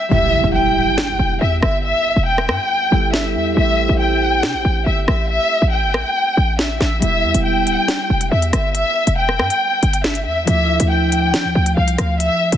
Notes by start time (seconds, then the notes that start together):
0.09 E1 G3 B3 E4 E5, impact
0.14 G4
0.33 E2
0.44 E1
0.55 G5
0.76 D1
0.98 snare
1.19 E1
1.41 E2 E5
1.62 G1 E5, cross-stick
1.84 E5
2.16 E1
2.27 G5
2.38 cross-stick
2.49 G2, cross-stick
2.90 G1 G3 B3 E4 A4
3.14 E5, snare
3.35 E2 E5
3.54 A1 A3 C4 E4 E5
3.59 G4
3.89 A1
4.00 G5
4.43 C3, snare
4.54 A1
4.65 A1
4.86 G1 E5
5.08 A1 E5, cross-stick
5.29 E5
5.62 A1
5.73 G5
5.83 G1
5.94 A1, cross-stick
6.37 A1
6.59 E5, snare
6.80 A1 E5, snare
6.99 E1 G3 B3 E4 E5, closed hi-hat
7.05 G4
7.24 E2
7.34 E1, closed hi-hat
7.45 G5
7.67 D1, closed hi-hat
7.88 snare, closed hi-hat
8.10 E1
8.21 closed hi-hat
8.31 E2 E5
8.42 closed hi-hat
8.53 G1 E5, cross-stick, closed hi-hat
8.75 E5, closed hi-hat
9.07 E1, closed hi-hat
9.18 G5
9.29 cross-stick
9.39 G2, cross-stick
9.50 closed hi-hat
9.83 G1, closed hi-hat
9.93 closed hi-hat
10.04 E5, snare
10.15 closed hi-hat
10.26 E2 E5
10.45 D2 F3 A3 D4 E5, closed hi-hat
10.50 E4
10.80 D2, closed hi-hat
10.90 G5
11.12 closed hi-hat
11.34 F3, snare, closed hi-hat
11.45 D2
11.55 D2
11.66 closed hi-hat
11.77 C2 F5
11.88 closed hi-hat
11.98 D2 F5, cross-stick, closed hi-hat
12.20 E5, closed hi-hat
12.52 D2, closed hi-hat